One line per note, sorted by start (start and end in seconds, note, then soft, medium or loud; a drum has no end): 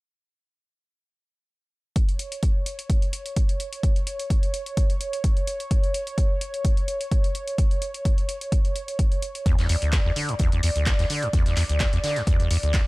1.96 9.47 C#5 medium
1.96 kick loud
1.96 closed hi-hat medium
2.09 closed hi-hat soft
2.19 closed hi-hat medium
2.32 closed hi-hat soft
2.43 kick medium
2.43 closed hi-hat medium
2.66 closed hi-hat medium
2.79 closed hi-hat soft
2.90 kick loud
2.90 closed hi-hat medium
3.02 closed hi-hat soft
3.13 closed hi-hat medium
3.26 closed hi-hat soft
3.36 kick medium
3.36 closed hi-hat medium
3.49 closed hi-hat soft
3.60 closed hi-hat medium
3.73 closed hi-hat soft
3.83 kick loud
3.83 closed hi-hat medium
3.96 closed hi-hat soft
4.07 closed hi-hat medium
4.20 closed hi-hat soft
4.30 kick loud
4.30 closed hi-hat medium
4.43 closed hi-hat soft
4.54 closed hi-hat medium
4.66 closed hi-hat soft
4.77 kick loud
4.77 closed hi-hat medium
4.90 closed hi-hat soft
5.01 closed hi-hat medium
5.13 closed hi-hat soft
5.24 kick loud
5.24 closed hi-hat medium
5.37 closed hi-hat soft
5.47 closed hi-hat medium
5.60 closed hi-hat soft
5.71 kick loud
5.71 closed hi-hat medium
5.83 closed hi-hat soft
5.94 closed hi-hat medium
6.07 closed hi-hat soft
6.18 kick loud
6.18 closed hi-hat medium
6.41 closed hi-hat medium
6.54 closed hi-hat soft
6.65 kick loud
6.65 closed hi-hat medium
6.77 closed hi-hat soft
6.88 closed hi-hat medium
7.01 closed hi-hat soft
7.12 kick loud
7.12 closed hi-hat medium
7.24 closed hi-hat soft
7.35 closed hi-hat medium
7.48 closed hi-hat soft
7.58 kick loud
7.58 closed hi-hat medium
7.71 closed hi-hat soft
7.82 closed hi-hat medium
7.94 closed hi-hat soft
8.05 kick loud
8.05 closed hi-hat medium
8.18 closed hi-hat soft
8.29 closed hi-hat medium
8.41 closed hi-hat soft
8.52 kick loud
8.52 closed hi-hat medium
8.65 closed hi-hat soft
8.76 closed hi-hat medium
8.88 closed hi-hat soft
8.99 kick loud
8.99 closed hi-hat medium
9.12 closed hi-hat soft
9.22 closed hi-hat medium
9.35 closed hi-hat soft
9.46 9.56 E2 medium
9.46 12.87 D5 medium
9.46 kick loud
9.46 closed hi-hat medium
9.58 9.67 E2 medium
9.58 snare soft
9.58 closed hi-hat soft
9.69 9.76 E2 loud
9.69 closed hi-hat medium
9.69 open hi-hat loud
9.82 9.94 D2 medium
9.82 closed hi-hat soft
9.92 10.00 E2 medium
9.92 kick loud
9.92 snare loud
9.92 clap loud
9.92 closed hi-hat medium
10.05 10.11 E2 medium
10.16 10.30 D3 medium
10.16 closed hi-hat medium
10.16 open hi-hat medium
10.29 10.35 G2 medium
10.29 closed hi-hat soft
10.39 10.50 E2 medium
10.39 kick loud
10.39 closed hi-hat medium
10.52 10.61 E2 medium
10.52 closed hi-hat soft
10.63 10.70 E2 medium
10.63 closed hi-hat medium
10.63 open hi-hat loud
10.76 10.88 D2 medium
10.76 closed hi-hat soft
10.86 10.93 E2 medium
10.86 kick loud
10.86 snare loud
10.86 clap loud
10.86 closed hi-hat medium
10.99 11.05 E2 medium
10.99 snare soft
10.99 closed hi-hat soft
11.10 11.24 D3 medium
11.10 closed hi-hat medium
11.10 open hi-hat medium
11.22 11.28 G2 loud
11.22 closed hi-hat soft
11.33 11.44 E2 medium
11.33 kick loud
11.33 closed hi-hat medium
11.46 11.55 E2 medium
11.46 snare soft
11.46 closed hi-hat soft
11.56 11.64 E2 loud
11.56 clap medium
11.56 closed hi-hat medium
11.56 open hi-hat loud
11.69 11.82 D2 medium
11.69 closed hi-hat soft
11.80 11.87 E2 medium
11.80 kick loud
11.80 snare loud
11.80 clap loud
11.80 closed hi-hat medium
11.93 11.99 E2 medium
11.93 closed hi-hat soft
12.03 12.18 D3 medium
12.03 snare medium
12.03 closed hi-hat medium
12.03 open hi-hat medium
12.16 12.22 G2 medium
12.16 snare soft
12.16 closed hi-hat soft
12.26 12.38 E2 medium
12.26 kick loud
12.26 closed hi-hat medium
12.39 12.49 E2 medium
12.39 closed hi-hat soft
12.50 12.57 E2 medium
12.50 closed hi-hat medium
12.50 open hi-hat loud
12.63 12.75 D2 medium
12.63 closed hi-hat soft
12.74 12.81 E2 medium
12.74 kick loud
12.74 snare loud
12.74 clap loud
12.74 closed hi-hat medium